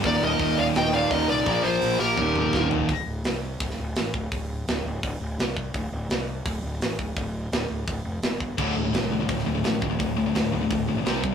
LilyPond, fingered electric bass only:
\new Staff \with { instrumentName = "Fingered electric bass" } { \clef bass \time 4/4 \key d \phrygian \tempo 4 = 168 ees,,8 ees,,8 ees,,8 ees,,8 ees,,4 ees,,8 c,8 | bes,,8 bes,,8 bes,,8 bes,,8 ees,,4 ees,,4 | d,,8 d,,8 c,4 d,,8 d,,8 a,,8 d,,8 | d,,4 d,,8 d,,8 d,,8 d,,8 c,4 |
d,,8 d,,8 c,4 d,,8 d,,8 a,,8 d,,8 | d,,4 d,,8 d,,8 d,,8 f,,8 g,,4 | d,,8 d,,8 c,4 d,,8 d,,8 a,,8 d,,8 | d,,4 d,,8 d,,8 d,,8 bes,,8 c,4 | }